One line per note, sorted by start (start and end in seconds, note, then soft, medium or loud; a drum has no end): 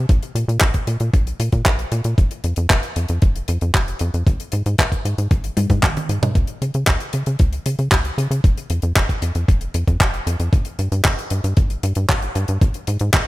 0.09 0.19 A#1 loud
0.09 kick loud
0.09 closed hi-hat medium
0.23 closed hi-hat medium
0.35 0.45 A#2 medium
0.35 closed hi-hat medium
0.48 0.58 A#2 loud
0.48 closed hi-hat medium
0.61 0.71 A#1 medium
0.61 kick loud
0.61 clap loud
0.61 closed hi-hat medium
0.74 kick medium
0.74 closed hi-hat medium
0.87 0.97 A#2 medium
0.87 closed hi-hat medium
1.00 1.10 A#2 medium
1.00 closed hi-hat medium
1.14 1.33 A#1 medium
1.14 kick loud
1.14 closed hi-hat medium
1.27 closed hi-hat medium
1.40 1.49 A#2 medium
1.40 closed hi-hat loud
1.52 1.62 A#2 medium
1.52 kick medium
1.52 closed hi-hat medium
1.66 1.85 A#1 medium
1.66 kick loud
1.66 clap loud
1.66 closed hi-hat medium
1.79 closed hi-hat medium
1.92 2.02 A#2 loud
1.92 closed hi-hat medium
2.04 2.15 A#2 medium
2.04 closed hi-hat medium
2.18 2.28 F1 loud
2.18 kick loud
2.18 closed hi-hat medium
2.31 closed hi-hat medium
2.44 2.54 F2 medium
2.44 closed hi-hat medium
2.56 2.67 F2 loud
2.56 closed hi-hat medium
2.70 2.80 F1 medium
2.70 kick loud
2.70 clap loud
2.70 closed hi-hat medium
2.83 closed hi-hat medium
2.96 3.06 F2 medium
2.96 closed hi-hat medium
3.08 3.19 F2 medium
3.08 closed hi-hat medium
3.22 3.42 F1 medium
3.22 kick loud
3.22 closed hi-hat medium
3.36 closed hi-hat medium
3.48 3.58 F2 medium
3.48 closed hi-hat loud
3.61 3.71 F2 medium
3.61 closed hi-hat soft
3.74 3.94 F1 medium
3.74 kick loud
3.74 clap loud
3.74 closed hi-hat medium
3.88 closed hi-hat medium
3.99 4.10 F2 loud
3.99 closed hi-hat loud
4.14 4.24 F2 medium
4.14 closed hi-hat medium
4.27 4.36 G#1 loud
4.27 kick loud
4.27 closed hi-hat medium
4.40 closed hi-hat medium
4.52 4.63 G#2 medium
4.52 closed hi-hat loud
4.66 4.76 G#2 loud
4.66 closed hi-hat medium
4.78 4.89 G#1 medium
4.78 kick loud
4.78 clap loud
4.78 closed hi-hat medium
4.92 kick medium
4.92 closed hi-hat medium
5.05 5.15 G#2 medium
5.05 closed hi-hat loud
5.18 5.28 G#2 medium
5.18 closed hi-hat medium
5.31 5.51 G#1 medium
5.31 kick loud
5.31 closed hi-hat medium
5.44 closed hi-hat medium
5.57 5.67 G#2 loud
5.57 closed hi-hat loud
5.57 high tom medium
5.70 5.80 G#2 loud
5.70 kick medium
5.70 closed hi-hat medium
5.70 high tom medium
5.82 5.93 G#1 loud
5.82 kick loud
5.82 clap loud
5.82 closed hi-hat medium
5.82 mid tom medium
5.97 closed hi-hat medium
5.97 mid tom medium
6.09 6.19 G#2 medium
6.09 closed hi-hat medium
6.22 6.32 G#2 medium
6.22 closed hi-hat medium
6.22 mid tom loud
6.35 6.45 C#2 loud
6.35 kick loud
6.35 closed hi-hat medium
6.47 closed hi-hat medium
6.62 6.71 C#3 medium
6.62 closed hi-hat medium
6.74 6.84 C#3 loud
6.74 closed hi-hat medium
6.87 6.97 C#2 medium
6.87 kick loud
6.87 clap loud
6.87 closed hi-hat medium
7.00 closed hi-hat medium
7.13 7.23 C#3 medium
7.13 closed hi-hat loud
7.26 7.37 C#3 medium
7.26 closed hi-hat medium
7.39 7.59 C#2 medium
7.39 kick loud
7.39 closed hi-hat medium
7.53 closed hi-hat medium
7.66 7.76 C#3 medium
7.66 closed hi-hat loud
7.79 7.89 C#3 medium
7.79 closed hi-hat soft
7.92 8.11 C#2 medium
7.92 kick loud
7.92 clap loud
7.92 closed hi-hat medium
8.05 closed hi-hat medium
8.18 8.28 C#3 loud
8.18 closed hi-hat loud
8.31 8.41 C#3 loud
8.31 closed hi-hat medium
8.44 8.54 F1 loud
8.44 kick loud
8.44 closed hi-hat medium
8.57 closed hi-hat medium
8.70 8.80 F2 medium
8.70 closed hi-hat loud
8.82 8.93 F2 loud
8.82 closed hi-hat medium
8.96 9.06 F1 medium
8.96 kick loud
8.96 clap loud
8.96 closed hi-hat medium
9.09 kick medium
9.09 closed hi-hat medium
9.22 9.32 F2 medium
9.22 closed hi-hat loud
9.35 9.45 F2 medium
9.35 closed hi-hat medium
9.48 9.68 F1 medium
9.48 kick loud
9.48 closed hi-hat medium
9.61 closed hi-hat medium
9.74 9.84 F2 medium
9.74 closed hi-hat loud
9.87 9.97 F2 medium
9.87 kick medium
9.87 closed hi-hat soft
10.00 10.20 F1 medium
10.00 kick loud
10.00 clap loud
10.00 closed hi-hat medium
10.14 closed hi-hat medium
10.27 10.36 F2 loud
10.27 closed hi-hat loud
10.40 10.49 F2 loud
10.40 closed hi-hat medium
10.53 10.63 G1 loud
10.53 kick loud
10.53 closed hi-hat medium
10.65 closed hi-hat medium
10.79 10.89 G2 medium
10.79 closed hi-hat medium
10.92 11.02 G2 loud
10.92 closed hi-hat medium
11.05 11.15 G1 medium
11.05 kick loud
11.05 clap loud
11.05 closed hi-hat medium
11.19 closed hi-hat medium
11.30 11.41 G2 medium
11.30 closed hi-hat loud
11.44 11.54 G2 medium
11.44 closed hi-hat medium
11.57 11.77 G1 medium
11.57 kick loud
11.57 closed hi-hat medium
11.70 closed hi-hat medium
11.83 11.93 G2 medium
11.83 closed hi-hat loud
11.95 12.06 G2 medium
11.95 closed hi-hat medium
12.09 12.29 G1 medium
12.09 kick loud
12.09 clap loud
12.09 closed hi-hat medium
12.22 closed hi-hat medium
12.35 12.45 G2 loud
12.35 closed hi-hat loud
12.48 12.58 G2 medium
12.48 closed hi-hat medium
12.61 12.71 G#1 medium
12.61 kick loud
12.61 closed hi-hat medium
12.74 closed hi-hat medium
12.87 12.97 G#2 medium
12.87 closed hi-hat loud
12.99 13.10 G#2 loud
12.99 closed hi-hat medium
13.14 13.23 G#1 medium
13.14 kick loud
13.14 clap loud
13.14 closed hi-hat medium